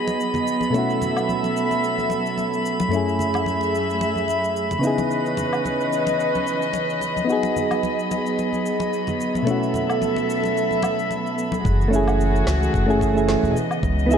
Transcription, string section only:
0, 0, Header, 1, 2, 480
1, 0, Start_track
1, 0, Tempo, 545455
1, 653, Time_signature, 4, 2, 24, 8
1, 12478, End_track
2, 0, Start_track
2, 0, Title_t, "String section"
2, 0, Program_c, 0, 48
2, 0, Note_on_c, 0, 54, 72
2, 0, Note_on_c, 0, 59, 63
2, 0, Note_on_c, 0, 68, 62
2, 0, Note_on_c, 0, 75, 69
2, 617, Note_off_c, 0, 75, 0
2, 633, Note_off_c, 0, 68, 0
2, 651, Note_on_c, 0, 69, 61
2, 651, Note_on_c, 0, 76, 79
2, 2539, Note_off_c, 0, 59, 0
2, 2553, Note_off_c, 0, 69, 0
2, 2553, Note_off_c, 0, 76, 0
2, 2574, Note_on_c, 0, 76, 76
2, 2575, Note_on_c, 0, 68, 59
2, 2577, Note_on_c, 0, 57, 65
2, 4217, Note_off_c, 0, 54, 0
2, 4237, Note_off_c, 0, 68, 0
2, 4237, Note_off_c, 0, 76, 0
2, 4238, Note_off_c, 0, 57, 0
2, 4252, Note_on_c, 0, 61, 64
2, 4254, Note_on_c, 0, 52, 68
2, 4254, Note_on_c, 0, 71, 66
2, 4254, Note_on_c, 0, 75, 78
2, 6391, Note_off_c, 0, 61, 0
2, 6392, Note_off_c, 0, 52, 0
2, 6392, Note_off_c, 0, 71, 0
2, 6410, Note_on_c, 0, 54, 69
2, 6410, Note_on_c, 0, 68, 61
2, 6411, Note_on_c, 0, 59, 67
2, 8298, Note_off_c, 0, 75, 0
2, 8312, Note_off_c, 0, 68, 0
2, 8331, Note_on_c, 0, 69, 65
2, 8331, Note_on_c, 0, 76, 77
2, 10216, Note_off_c, 0, 54, 0
2, 10217, Note_off_c, 0, 59, 0
2, 10233, Note_off_c, 0, 69, 0
2, 10233, Note_off_c, 0, 76, 0
2, 10251, Note_on_c, 0, 52, 79
2, 10251, Note_on_c, 0, 66, 90
2, 10252, Note_on_c, 0, 57, 74
2, 10252, Note_on_c, 0, 68, 67
2, 11915, Note_off_c, 0, 57, 0
2, 11915, Note_off_c, 0, 66, 0
2, 11916, Note_off_c, 0, 68, 0
2, 11927, Note_on_c, 0, 59, 78
2, 11929, Note_on_c, 0, 49, 82
2, 11929, Note_on_c, 0, 75, 83
2, 12478, Note_off_c, 0, 49, 0
2, 12478, Note_off_c, 0, 52, 0
2, 12478, Note_off_c, 0, 59, 0
2, 12478, Note_off_c, 0, 75, 0
2, 12478, End_track
0, 0, End_of_file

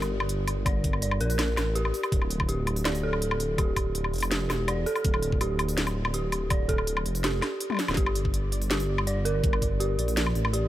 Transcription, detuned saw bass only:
0, 0, Header, 1, 2, 480
1, 0, Start_track
1, 0, Tempo, 365854
1, 862, Time_signature, 4, 2, 24, 8
1, 14012, End_track
2, 0, Start_track
2, 0, Title_t, "Detuned saw bass"
2, 0, Program_c, 0, 39
2, 0, Note_on_c, 0, 31, 87
2, 848, Note_off_c, 0, 31, 0
2, 864, Note_on_c, 0, 31, 102
2, 1568, Note_off_c, 0, 31, 0
2, 1581, Note_on_c, 0, 34, 94
2, 2047, Note_off_c, 0, 34, 0
2, 2062, Note_on_c, 0, 33, 92
2, 2527, Note_off_c, 0, 33, 0
2, 2785, Note_on_c, 0, 26, 103
2, 3729, Note_off_c, 0, 26, 0
2, 3741, Note_on_c, 0, 26, 87
2, 4687, Note_off_c, 0, 26, 0
2, 4703, Note_on_c, 0, 26, 104
2, 5408, Note_off_c, 0, 26, 0
2, 5419, Note_on_c, 0, 29, 99
2, 5886, Note_off_c, 0, 29, 0
2, 5902, Note_on_c, 0, 28, 90
2, 6368, Note_off_c, 0, 28, 0
2, 6621, Note_on_c, 0, 26, 101
2, 7567, Note_off_c, 0, 26, 0
2, 7582, Note_on_c, 0, 26, 87
2, 8527, Note_off_c, 0, 26, 0
2, 8538, Note_on_c, 0, 26, 99
2, 9245, Note_off_c, 0, 26, 0
2, 9261, Note_on_c, 0, 29, 91
2, 9727, Note_off_c, 0, 29, 0
2, 10343, Note_on_c, 0, 26, 96
2, 10452, Note_off_c, 0, 26, 0
2, 10460, Note_on_c, 0, 31, 101
2, 11406, Note_off_c, 0, 31, 0
2, 11419, Note_on_c, 0, 31, 83
2, 12366, Note_off_c, 0, 31, 0
2, 12380, Note_on_c, 0, 31, 103
2, 13087, Note_off_c, 0, 31, 0
2, 13097, Note_on_c, 0, 34, 95
2, 13565, Note_off_c, 0, 34, 0
2, 13582, Note_on_c, 0, 33, 93
2, 14012, Note_off_c, 0, 33, 0
2, 14012, End_track
0, 0, End_of_file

